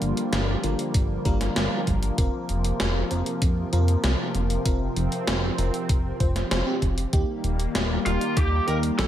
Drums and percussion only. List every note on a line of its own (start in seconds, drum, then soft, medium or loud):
0.02 closed hi-hat medium
0.17 closed hi-hat medium
0.33 snare loud
0.33 closed hi-hat loud
0.64 closed hi-hat medium
0.79 closed hi-hat medium
0.94 kick loud
0.94 closed hi-hat loud
1.25 kick loud
1.25 closed hi-hat medium
1.41 snare soft
1.41 closed hi-hat medium
1.56 snare loud
1.56 closed hi-hat medium
1.87 kick medium
1.87 closed hi-hat medium
2.03 closed hi-hat medium
2.18 kick loud
2.18 closed hi-hat loud
2.49 closed hi-hat medium
2.64 closed hi-hat medium
2.80 snare loud
2.80 closed hi-hat medium
3.11 closed hi-hat medium
3.26 closed hi-hat medium
3.42 kick loud
3.42 closed hi-hat loud
3.73 closed hi-hat medium
3.88 closed hi-hat medium
4.04 snare loud
4.04 closed hi-hat medium
4.35 closed hi-hat medium
4.50 closed hi-hat medium
4.66 kick loud
4.66 closed hi-hat medium
4.96 closed hi-hat medium
5.12 closed hi-hat medium
5.27 snare loud
5.27 closed hi-hat medium
5.58 closed hi-hat medium
5.74 closed hi-hat medium
5.89 kick loud
5.89 closed hi-hat medium
6.20 kick loud
6.20 closed hi-hat medium
6.36 snare soft
6.36 closed hi-hat medium
6.51 snare loud
6.51 closed hi-hat medium
6.82 kick medium
6.82 closed hi-hat medium
6.98 closed hi-hat medium
7.13 kick loud
7.13 closed hi-hat medium
7.44 closed hi-hat medium
7.60 closed hi-hat medium
7.75 snare loud
7.75 closed hi-hat medium
8.06 closed hi-hat medium
8.21 closed hi-hat medium
8.37 kick loud
8.37 closed hi-hat medium
8.68 closed hi-hat medium
8.83 closed hi-hat medium
8.99 snare loud
8.99 closed hi-hat medium